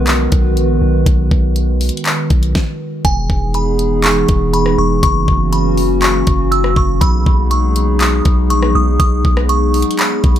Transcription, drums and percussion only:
0.07 clap, closed hi-hat
0.32 kick, closed hi-hat
0.57 closed hi-hat
1.06 kick, closed hi-hat
1.31 kick
1.56 closed hi-hat
1.81 closed hi-hat, open hi-hat
1.89 closed hi-hat
1.97 closed hi-hat
2.05 clap, closed hi-hat
2.30 kick, closed hi-hat
2.43 closed hi-hat
2.55 kick, snare
3.05 kick, closed hi-hat
3.30 kick
3.54 closed hi-hat
3.79 closed hi-hat
4.04 clap, closed hi-hat
4.29 kick, closed hi-hat
4.54 closed hi-hat
4.66 cross-stick
5.03 kick, closed hi-hat
5.28 kick
5.53 closed hi-hat
5.77 open hi-hat
6.02 clap, closed hi-hat
6.27 kick, closed hi-hat
6.52 closed hi-hat
6.64 cross-stick
6.76 kick
7.01 kick, closed hi-hat
7.26 kick
7.51 closed hi-hat
7.76 closed hi-hat
8.01 clap, closed hi-hat
8.25 kick, closed hi-hat
8.50 closed hi-hat
8.62 cross-stick
9.00 kick, closed hi-hat
9.25 kick
9.37 cross-stick
9.49 closed hi-hat
9.74 closed hi-hat, open hi-hat
9.82 closed hi-hat
9.91 closed hi-hat
9.99 clap, closed hi-hat
10.24 kick, closed hi-hat
10.36 closed hi-hat

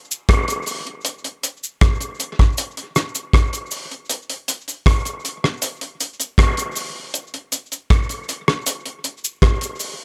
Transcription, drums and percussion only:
0.11 cabasa
0.29 kick, cross-stick, closed hi-hat
0.48 closed hi-hat, cabasa
0.66 open hi-hat, cabasa
0.87 closed hi-hat
1.05 closed hi-hat, cabasa
1.24 closed hi-hat
1.43 closed hi-hat, cabasa
1.64 cabasa
1.81 kick, cross-stick, closed hi-hat
2.01 closed hi-hat, cabasa
2.20 closed hi-hat, cabasa
2.39 kick, cross-stick, closed hi-hat
2.58 closed hi-hat, cabasa
2.77 closed hi-hat
2.96 cross-stick, closed hi-hat, cabasa
3.15 closed hi-hat, cabasa
3.33 kick, cross-stick, closed hi-hat
3.53 closed hi-hat, cabasa
3.71 open hi-hat, cabasa
3.91 closed hi-hat
4.10 closed hi-hat, cabasa
4.30 closed hi-hat
4.48 closed hi-hat, cabasa
4.68 closed hi-hat, cabasa
4.86 kick, cross-stick, closed hi-hat
5.05 closed hi-hat, cabasa
5.25 closed hi-hat, cabasa
5.44 cross-stick
5.62 closed hi-hat, cabasa
5.81 closed hi-hat
6.00 closed hi-hat, cabasa
6.20 closed hi-hat, cabasa
6.38 kick, cross-stick, closed hi-hat
6.57 closed hi-hat, cabasa
6.75 open hi-hat, cabasa
7.14 closed hi-hat, cabasa
7.34 closed hi-hat
7.52 closed hi-hat, cabasa
7.72 closed hi-hat, cabasa
7.90 kick, cross-stick, closed hi-hat
8.09 closed hi-hat, cabasa
8.29 closed hi-hat, cabasa
8.48 cross-stick
8.66 closed hi-hat, cabasa
8.86 closed hi-hat
9.04 closed hi-hat, cabasa
9.24 cabasa
9.42 kick, cross-stick, closed hi-hat
9.61 closed hi-hat, cabasa
9.79 open hi-hat, cabasa

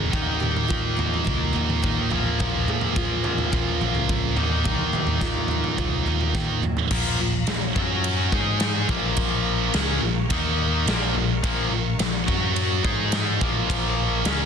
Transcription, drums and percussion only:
0.13 kick, floor tom
0.43 mid tom
0.57 floor tom
0.70 kick
0.99 floor tom
1.14 floor tom
1.27 kick, floor tom
1.56 floor tom
1.70 mid tom
1.84 kick
2.11 floor tom
2.40 kick, floor tom
2.68 mid tom
2.81 floor tom
2.96 kick
3.24 floor tom
3.38 floor tom
3.52 kick, floor tom
3.81 floor tom
3.95 mid tom
4.09 kick
4.37 floor tom
4.64 kick, floor tom
4.93 floor tom, mid tom
5.07 floor tom
5.21 kick, snare
5.34 floor tom
5.48 floor tom
5.64 floor tom
5.78 kick, floor tom
6.07 floor tom
6.21 mid tom
6.35 kick, snare
6.63 mid tom
6.77 floor tom
6.91 kick, crash
7.47 snare, ride bell
7.76 kick
8.04 ride bell
8.32 kick
8.60 snare, ride bell
8.89 kick
9.17 kick, ride bell
9.74 snare, ride bell
10.30 kick, ride bell
10.88 snare, ride bell
11.44 kick, ride bell
11.99 snare, ride bell
12.28 kick
12.56 ride bell
12.85 kick
13.12 snare, ride bell
13.41 kick
13.70 kick, ride bell
14.25 snare, ride bell

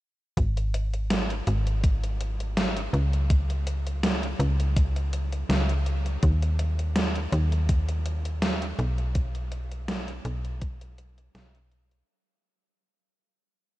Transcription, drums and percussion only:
0.37 kick, closed hi-hat
0.57 closed hi-hat
0.74 closed hi-hat
0.94 closed hi-hat
1.10 snare, closed hi-hat
1.30 closed hi-hat
1.47 closed hi-hat
1.67 closed hi-hat
1.84 kick, closed hi-hat
2.03 closed hi-hat
2.21 closed hi-hat
2.40 closed hi-hat
2.57 snare, closed hi-hat
2.77 closed hi-hat
2.94 closed hi-hat
3.13 closed hi-hat
3.30 kick, closed hi-hat
3.50 closed hi-hat
3.67 closed hi-hat
3.87 closed hi-hat
4.03 snare, closed hi-hat
4.23 closed hi-hat
4.40 closed hi-hat
4.60 closed hi-hat
4.76 kick, closed hi-hat
4.96 closed hi-hat
5.13 closed hi-hat
5.32 closed hi-hat
5.50 snare, closed hi-hat
5.69 closed hi-hat
5.86 closed hi-hat
6.06 closed hi-hat
6.23 kick, closed hi-hat
6.42 closed hi-hat
6.59 closed hi-hat
6.79 closed hi-hat
6.96 snare, closed hi-hat
7.15 closed hi-hat
7.32 closed hi-hat
7.52 closed hi-hat
7.69 kick, closed hi-hat
7.89 closed hi-hat
8.06 closed hi-hat
8.25 closed hi-hat
8.42 snare, closed hi-hat
8.62 closed hi-hat
8.79 closed hi-hat
8.98 closed hi-hat
9.15 kick, closed hi-hat
9.35 closed hi-hat
9.52 closed hi-hat
9.72 closed hi-hat
9.88 snare, closed hi-hat
10.08 closed hi-hat
10.25 closed hi-hat
10.45 closed hi-hat
10.61 kick, closed hi-hat
10.81 closed hi-hat
10.98 closed hi-hat
11.18 closed hi-hat
11.35 snare, closed hi-hat
11.55 closed hi-hat
11.72 closed hi-hat
11.91 closed hi-hat

